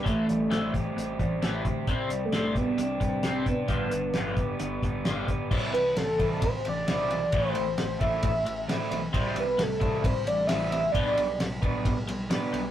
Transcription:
<<
  \new Staff \with { instrumentName = "Analog synth lead" } { \time 4/4 \key c \major \tempo 4 = 132 a2 r2 | c'8. a8. b8 c'4. b8~ | b2. r4 | r8 b'8 a'4 c''8 d''8 d''4 |
c''4. e''2 r8 | r8 b'8 a'4 c''8 d''8 e''8 e''8 | d''4 r2. | }
  \new Staff \with { instrumentName = "Overdriven electric guitar" } { \time 4/4 \key c \major a,8 g8 c'8 g'8 c'8 g8 g'8 c'8 | c8 g8 d'8 g'8 d'8 g8 g'8 d'8 | g,8 g8 b8 g'8 b8 g8 g'8 b8 | <e g c' e'>8 r4 <e g c' e'>8 r4 <e g c' e'>8 r8 |
<e a c' e'>8 r4 <e a c' e'>8 r4 <e a c' e'>8 r8 | <e g c' e'>8 r4 <e g c' e'>8 r4 <e g c' e'>8 r8 | <b d' g' b'>8 r4 <b d' g' b'>8 r4 <b d' g' b'>8 r8 | }
  \new Staff \with { instrumentName = "Overdriven electric guitar" } { \clef bass \time 4/4 \key c \major <a, e a>8 <a, e>8 <a, e a>8 <a, e>8 <a, e>8 <a, e>8 <a, e a>8 <a, e>8 | <c g c'>8 <c g>8 <c g c'>8 <c g>8 <c g>8 <c g>8 <c g c'>8 <c g>8 | <g, d f>8 <g, d>8 <g, d f>8 <g, d>8 <g, d>8 <g, d>8 <g, d f>8 <g, d>8 | <c e g>8 <c e>8 <c e>8 <c e>8 <c e>8 <c e>8 <c e>8 <c e>8 |
<a, e a>8 <a, e>8 <a, e>8 <a, e>8 <a, e>8 <a, e>8 <a, e>8 <a, e>8 | <c g c'>8 <c g>8 <c g>8 <c g>8 <c g>8 <c g>8 <c g>8 <c g>8 | <b, g b>8 <b, g>8 <b, g>8 <b, g>8 <b, g>8 <b, g>8 <b, g>8 <b, g>8 | }
  \new Staff \with { instrumentName = "Fingered electric bass" } { \clef bass \time 4/4 \key c \major a,,8 a,,8 a,,4 a,,8 a,,8 a,,8 d,8 | c,8 c,8 c,4 c,8 c,8 c,8 c8 | g,,8 g,,8 g,,4 g,,8 g,,8 g,,8 g,8 | c,8 c,8 c,8 c,8 c,8 a,,8 b,,4 |
a,,8 a,,8 a,,8 a,,8 a,,8 a,,8 a,8 b,,8 | c,8 c,8 c,8 c,8 c,8 a,,8 a,,4 | b,,8 b,,8 b,,8 b,,8 b,,8 b,,8 b,8 b,,8 | }
  \new DrumStaff \with { instrumentName = "Drums" } \drummode { \time 4/4 <hh bd>8 hh8 <hh sn>8 <hh bd>8 hh8 <hh bd>8 <hh sn>8 <hh bd>8 | <hh bd>8 hh8 <hh sn>8 <hh bd>8 hh8 <hh bd>8 <hh sn>8 <hh bd>8 | <hh bd>8 hh8 <hh sn>8 <hh bd>8 hh8 <hh bd>8 <hh sn>8 <hh bd>8 | <cymc bd>8 cymr8 <cymr sn>8 <bd cymr>8 <bd cymr>8 cymr8 <cymr sn>8 cymr8 |
<bd cymr>8 cymr8 <cymr sn>8 <bd cymr>8 <bd cymr>8 cymr8 <cymr sn>8 cymr8 | <bd cymr>8 cymr8 <cymr sn>8 <bd cymr>8 <bd cymr>8 cymr8 <cymr sn>8 cymr8 | <bd cymr>8 cymr8 <cymr sn>8 <bd cymr>8 <bd cymr>8 cymr8 <cymr sn>8 cymr8 | }
>>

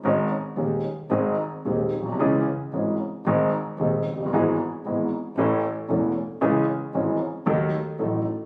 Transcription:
<<
  \new Staff \with { instrumentName = "Grand piano" } { \clef bass \time 4/4 \key cis \minor \tempo 4 = 114 <gis,, gis, dis gis cis' gis'>8 r8 <dis,, dis, dis gis cis' gis'>8 r8 <gis,, gis, dis gis bis gis'>8 r8 <dis,, dis, dis gis bis gis'>8 r32 ais,,32 b,,32 bis,,32 | <cis, cis e gis cis' gis'>8 r8 <gis,, gis, e gis cis' gis'>8 r8 <gis,, gis, dis gis bis gis'>8 r8 <dis,, dis, dis gis bis gis'>8 r32 eis,,32 fis,,32 g,,32 | <gis,, gis, e gis b gis'>8 r8 <gis,, gis, e gis b gis'>8 r8 <a,, a, e a cis' a'>8 r8 <e,, e, e a cis' a'>8 r8 | <cis, cis e gis cis' gis'>8 r8 <gis,, gis, e gis cis' gis'>8 r8 <dis, dis fis a dis' a'>8 r8 <a,, a, fis a dis' a'>8 r8 | }
  \new Staff \with { instrumentName = "Double bass" } { \clef bass \time 4/4 \key cis \minor gis,,8 r8 dis,8 r8 gis,,8 r8 dis,8 b,,8 | cis,8 r8 gis,,8 r8 gis,,8 r8 dis,8 fis,,8 | gis,,8 r8 gis,,8 r8 a,,8 r8 e,,8 r8 | cis,8 r8 gis,,8 r8 dis,8 r8 a,,8 r8 | }
>>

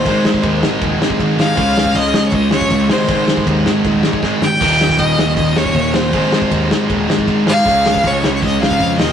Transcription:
<<
  \new Staff \with { instrumentName = "Violin" } { \time 4/4 \key aes \major \tempo 4 = 158 c''4. r2 f''8~ | f''4 ees''8.~ ees''32 des''32 ees''8 des''4 c''8~ | c''4. r2 g''8~ | g''4 ees''4 ees''8 des''4 c''8~ |
c''4. r2 f''8~ | f''4 des''8. des''16 ees''8 f''4 ees''8 | }
  \new Staff \with { instrumentName = "Distorted electric guitar" } { \clef bass \time 4/4 \key aes \major <aes, ees aes>2~ <aes, ees aes>8 <aes, ees aes>8 <aes, ees aes>4 | <des aes des'>2~ <des aes des'>8 <des aes des'>8 <des aes des'>8 <aes, ees aes>8~ | <aes, ees aes>2 <aes, ees aes>8 <aes, ees aes>4 r8 | <ees, bes, ees>2~ <ees, bes, ees>8 <ees, bes, ees>8 <ees, bes, ees>4 |
<aes, ees aes>2~ <aes, ees aes>8 <aes, ees aes>8 <aes, ees aes>4 | <des aes des'>2~ <des aes des'>8 <des aes des'>8 <des aes des'>8 <ees, bes, ees>8 | }
  \new Staff \with { instrumentName = "Distorted electric guitar" } { \clef bass \time 4/4 \key aes \major <aes, ees aes>2.~ <aes, ees aes>8 <aes, ees aes>8 | <des aes des'>2.~ <des aes des'>8 <aes, ees aes>8~ | <aes, ees aes>2. <aes, ees aes>8 r8 | <ees, bes, ees>2.~ <ees, bes, ees>8 <ees, bes, ees>8 |
<aes, ees aes>2.~ <aes, ees aes>8 <aes, ees aes>8 | <des aes des'>2.~ <des aes des'>8 <ees, bes, ees>8 | }
  \new Staff \with { instrumentName = "Overdriven electric guitar" } { \clef bass \time 4/4 \key aes \major <aes, ees aes>1 | <des aes des'>2.~ <des aes des'>8 <aes, ees aes>8~ | <aes, ees aes>2.~ <aes, ees aes>8 r8 | <ees, bes, ees>1 |
<aes, ees aes>1 | <des aes des'>2.~ <des aes des'>8 <ees, bes, ees>8 | }
  \new Staff \with { instrumentName = "Picked electric bass" } { \clef bass \time 4/4 \key aes \major aes,,4 ees,8 aes,,8 ees,,8 aes,,8 aes,,8 aes,,8 | des,4 des,8 des,8 des,8 des,8 des,8 aes,,8 | aes,,4 ees,8 aes,,8 ees,,8 aes,,8 aes,,8 aes,,8 | ees,,4 ees,,8 ees,,8 ees,,8 ees,,8 ees,,8 ees,,8 |
aes,,4 ees,8 aes,,8 ees,,8 aes,,8 aes,,8 aes,,8 | des,4 des,8 des,8 des,8 des,8 f,8 ees,,8 | }
  \new DrumStaff \with { instrumentName = "Drums" } \drummode { \time 4/4 <bd cymr>8 sn16 bd16 <bd cymr>8 sn8 <bd cymr>8 sn16 bd16 <bd cymr>8 sn8 | <bd cymr>8 sn16 bd16 <bd cymr>8 sn8 <bd cymr>8 sn16 bd16 <bd cymr>8 sn8 | <bd cymr>8 sn16 bd16 <bd cymr>8 sn8 <bd cymr>8 sn16 bd16 <bd sn>8 sn8 | <cymc bd>8 sn16 bd16 <bd cymr>8 sn8 <bd cymr>8 sn16 bd16 <bd cymr>8 sn8 |
<bd cymr>8 sn16 bd16 <bd cymr>8 sn8 <bd cymr>8 sn16 bd16 <bd cymr>8 sn8 | <bd cymr>8 sn16 bd16 <bd cymr>8 sn8 <bd cymr>8 sn16 bd16 <bd cymr>8 sn8 | }
>>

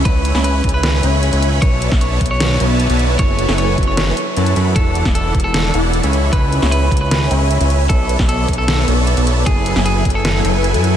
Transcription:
<<
  \new Staff \with { instrumentName = "Supersaw synth" } { \time 4/4 \key fis \minor \tempo 4 = 153 <cis' cis'' e'' gis'' b''>8. <cis' cis'' e'' gis'' b''>8. <cis' cis'' e'' gis'' b''>4 <cis' cis'' e'' gis'' b''>8. <cis' cis'' e'' gis'' b''>8. | <b b' cis'' d'' e'' a''>8. <b b' cis'' d'' e'' a''>8. <b b' cis'' d'' e'' a''>4 <b b' cis'' d'' e'' a''>8. <b b' cis'' d'' e'' a''>8. | <fis e' a' b' gis''>8. <fis e' a' b' gis''>8. <fis e' a' b' gis''>4 r8 <fis e' a' b' a''>8 <fis e' a' b' b''>8 | <e e' d'' fis'' a''>8. <e e' d'' fis'' a''>8. <e e' d'' fis'' a''>4 <e e' d'' fis'' a''>8. <cis' cis'' e'' gis'' b''>8. |
<cis' cis'' e'' gis'' b''>8. <cis' cis'' e'' gis'' b''>8. <cis' cis'' e'' gis'' b''>4 <cis' cis'' e'' gis'' b''>8. <cis' cis'' e'' gis'' b''>8. | <b b' cis'' d'' e'' a''>8. <b b' cis'' d'' e'' a''>8. <b b' cis'' d'' e'' a''>4 <b b' cis'' d'' e'' a''>8. <b b' cis'' d'' e'' a''>8. | <fis e' a' b' gis''>8. <fis e' a' b' gis''>8. <fis e' a' b' gis''>4 <fis e' a' b' gis''>8. <fis e' a' b' gis''>8. | }
  \new Staff \with { instrumentName = "Clean electric guitar" } { \time 4/4 \key fis \minor b'8. r16 b'8. b'8. r4. | cis''8. r16 cis''8. cis''8. r4. | cis''8. r16 cis''8. cis''8. r4. | a'8. r16 a'8. a'8. r4. |
b'8. r16 b'8. b'8. r4. | a'8. r16 a'8. a'8. r4. | gis'8. r16 gis'8. a'8. r4. | }
  \new Staff \with { instrumentName = "Analog synth bass" } { \clef bass \time 4/4 \key fis \minor cis,8. cis,8. cis,4 cis,8. cis,8. | b,,8. r8. b,,4 b,,8. b,,8. | fis,,8. fis,,8. fis,,4 r8 fis,8 fis,8 | e,,8. e,,8. e,,4 e,,8. cis,8. |
cis,8. cis,8. cis,4 cis,8. cis,8. | b,,8. b,,8. b,,4 b,,8. b,,8. | r8. fis,,8. r4 fis,,8. fis,8. | }
  \new DrumStaff \with { instrumentName = "Drums" } \drummode { \time 4/4 <hh bd>8 hh16 sn16 hh8 <hh bd>32 hh16. <hh sn>8 hh8 hh16 hh16 hh8 | <hh bd>8 hh16 <bd sn>16 hh8 <hh bd>32 hh16. <hh sn>8 hh8 hh16 hh16 hh8 | <hh bd>8 hh16 sn16 hh8 <hh bd>32 hh16. <hh sn>8 hh8 hh16 hh16 hh8 | <hh bd>8 hh16 <bd sn>16 hh8 <hh bd>32 hh16. <hh sn>8 hh8 hh16 hh16 hh8 |
<hh bd>8 hh16 sn16 hh8 <hh bd>32 hh16. <hh sn>8 hh8 hh16 hh16 hh8 | <hh bd>8 hh16 <bd sn>16 hh8 <hh bd>32 hh16. <hh sn>8 hh8 hh16 hh16 hh8 | <hh bd>8 hh16 sn16 hh8 <hh bd>32 hh16. <hh sn>8 hh8 hh16 hh16 hh8 | }
>>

